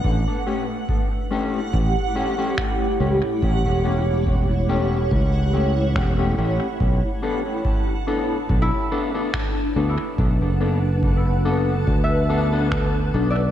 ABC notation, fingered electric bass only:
X:1
M:4/4
L:1/16
Q:"Swing 16ths" 1/4=71
K:Bm
V:1 name="Fingered electric bass" clef=bass
A,,, z6 z A,,, z4 z C,, z | A,,, E,,,6- E,,, C,,4 E,,,2 A,,, z | B,,, z6 z B,,, z4 z D,, z | B,,, F,,,6- F,,, D,,6 B,,,2 |]